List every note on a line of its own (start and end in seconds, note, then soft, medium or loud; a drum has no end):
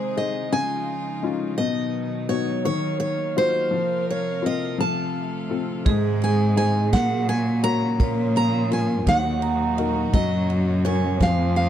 0.00 0.51 C3 medium
0.00 0.51 D#3 medium
0.00 0.49 G#3 medium
0.00 1.55 G#3 medium
0.00 2.62 D#4 medium
0.00 0.51 G#4 medium
0.00 0.19 C5 medium
0.16 0.51 D#4 medium
0.16 0.51 G#4 soft
0.16 0.51 C5 medium
0.16 0.53 D#5 medium
0.51 1.57 C#3 medium
0.51 1.56 C#3 medium
0.51 1.57 F3 medium
0.51 1.57 F4 medium
0.51 1.28 G#5 loud
1.23 1.57 C#4 medium
1.23 1.57 D#4 medium
1.23 1.58 F4 medium
1.58 2.62 B2 medium
1.58 2.65 B2 medium
1.58 2.64 D#3 medium
1.58 3.70 F#3 medium
1.58 2.29 D#5 loud
2.29 2.64 B3 medium
2.29 2.64 D#4 medium
2.29 2.64 F#4 medium
2.29 2.64 C#5 medium
2.65 3.69 D#3 medium
2.65 3.72 D#3 medium
2.65 4.78 A#3 medium
2.65 2.99 C#5 loud
2.65 5.83 F5 medium
3.00 3.37 C#5 medium
3.36 3.71 D#4 medium
3.36 3.71 F4 medium
3.36 3.71 F#4 medium
3.36 4.04 C5 loud
3.71 6.89 C3 medium
3.71 4.75 F3 medium
3.71 4.78 F3 medium
3.71 4.78 A#4 medium
4.10 4.46 C#5 medium
4.42 4.77 C4 medium
4.42 4.77 F4 soft
4.42 4.77 A#4 medium
4.46 4.80 D#5 loud
4.78 5.82 F3 medium
4.78 5.85 F3 medium
4.78 5.85 A3 medium
4.78 5.85 A4 medium
4.78 5.56 A5 loud
5.49 5.84 C4 medium
5.49 5.85 F4 soft
5.49 5.85 A4 medium
5.85 6.94 G#2 loud
5.85 6.92 D#3 medium
5.85 6.89 G#3 medium
5.85 6.92 G#3 medium
5.85 6.92 D#4 medium
5.85 7.24 G#4 medium
5.85 6.92 G#4 medium
5.85 kick loud
5.85 ride medium
6.22 6.56 G#5 medium
6.22 ride medium
6.56 6.91 D#4 medium
6.56 6.91 G#4 soft
6.56 6.92 C5 medium
6.56 6.92 G#5 loud
6.56 ride medium
6.92 7.95 A#2 loud
6.92 7.99 A#2 medium
6.92 9.05 C#3 medium
6.92 7.99 F#3 medium
6.92 7.96 A#3 medium
6.92 9.05 C#4 medium
6.92 7.99 F#4 medium
6.92 7.28 F#5 medium
6.92 kick medium
6.92 snare medium
6.92 ride medium
7.29 7.62 G#5 loud
7.29 ride medium
7.63 7.98 F#4 medium
7.63 7.98 A#4 medium
7.63 7.98 C#5 medium
7.63 8.36 A#5 loud
7.63 ride medium
7.99 9.08 A#2 loud
7.99 11.17 A#2 medium
7.99 9.05 F3 medium
7.99 9.03 A#3 medium
7.99 9.05 F4 medium
7.99 9.38 C#5 medium
7.99 kick loud
7.99 ride medium
8.36 8.73 A#5 loud
8.36 ride medium
8.71 9.05 F4 soft
8.71 9.06 A#4 medium
8.71 9.06 C#5 medium
8.71 9.08 G#5 medium
8.71 ride medium
9.07 10.09 D#2 loud
9.07 10.12 D#3 medium
9.07 10.10 D#3 medium
9.07 11.18 F#3 medium
9.07 10.12 D#4 medium
9.07 11.18 F#4 medium
9.07 9.83 F#5 loud
9.07 kick medium
9.07 snare medium
9.07 ride medium
9.42 10.45 A#5 medium
9.42 ride medium
9.78 10.12 D#4 medium
9.78 10.12 F#4 medium
9.78 10.13 A#4 medium
9.78 ride medium
10.13 11.22 F#2 loud
10.13 11.18 C#3 medium
10.13 11.17 F#3 medium
10.13 11.19 C#4 medium
10.13 10.84 D#5 loud
10.13 kick loud
10.13 ride medium
10.50 ride medium
10.85 11.20 C#4 soft
10.85 11.20 F#4 medium
10.85 11.20 A#4 medium
10.85 11.21 C#5 medium
10.85 11.52 G#5 medium
10.85 ride medium
11.19 11.69 F2 loud
11.19 11.69 A2 medium
11.19 11.69 C3 medium
11.19 11.69 F3 medium
11.19 11.69 C4 medium
11.19 11.69 F4 medium
11.19 11.55 F5 medium
11.19 kick medium
11.19 snare medium
11.19 ride medium
11.56 11.69 F5 medium
11.56 ride medium